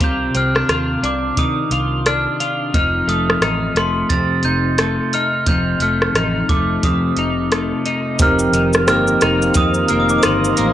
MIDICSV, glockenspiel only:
0, 0, Header, 1, 2, 480
1, 0, Start_track
1, 0, Tempo, 681818
1, 7, Time_signature, 4, 2, 24, 8
1, 7555, End_track
2, 0, Start_track
2, 0, Title_t, "Glockenspiel"
2, 0, Program_c, 0, 9
2, 28, Note_on_c, 0, 91, 88
2, 260, Note_on_c, 0, 89, 85
2, 264, Note_off_c, 0, 91, 0
2, 705, Note_off_c, 0, 89, 0
2, 741, Note_on_c, 0, 86, 81
2, 975, Note_on_c, 0, 87, 87
2, 981, Note_off_c, 0, 86, 0
2, 1456, Note_on_c, 0, 89, 89
2, 1466, Note_off_c, 0, 87, 0
2, 1809, Note_off_c, 0, 89, 0
2, 1931, Note_on_c, 0, 89, 94
2, 2153, Note_off_c, 0, 89, 0
2, 2176, Note_on_c, 0, 87, 84
2, 2624, Note_off_c, 0, 87, 0
2, 2658, Note_on_c, 0, 84, 88
2, 2882, Note_on_c, 0, 93, 90
2, 2900, Note_off_c, 0, 84, 0
2, 3108, Note_off_c, 0, 93, 0
2, 3131, Note_on_c, 0, 91, 90
2, 3617, Note_on_c, 0, 89, 91
2, 3624, Note_off_c, 0, 91, 0
2, 3855, Note_on_c, 0, 91, 83
2, 3860, Note_off_c, 0, 89, 0
2, 4098, Note_on_c, 0, 89, 91
2, 4099, Note_off_c, 0, 91, 0
2, 4545, Note_off_c, 0, 89, 0
2, 4570, Note_on_c, 0, 86, 81
2, 4678, Note_off_c, 0, 86, 0
2, 4816, Note_on_c, 0, 87, 78
2, 5505, Note_off_c, 0, 87, 0
2, 5787, Note_on_c, 0, 89, 106
2, 6230, Note_off_c, 0, 89, 0
2, 6261, Note_on_c, 0, 89, 95
2, 6736, Note_on_c, 0, 87, 104
2, 6749, Note_off_c, 0, 89, 0
2, 6959, Note_on_c, 0, 89, 89
2, 6966, Note_off_c, 0, 87, 0
2, 7028, Note_off_c, 0, 89, 0
2, 7037, Note_on_c, 0, 87, 81
2, 7109, Note_off_c, 0, 87, 0
2, 7113, Note_on_c, 0, 86, 85
2, 7163, Note_off_c, 0, 86, 0
2, 7169, Note_on_c, 0, 87, 85
2, 7215, Note_off_c, 0, 87, 0
2, 7217, Note_on_c, 0, 84, 79
2, 7555, Note_off_c, 0, 84, 0
2, 7555, End_track
0, 0, End_of_file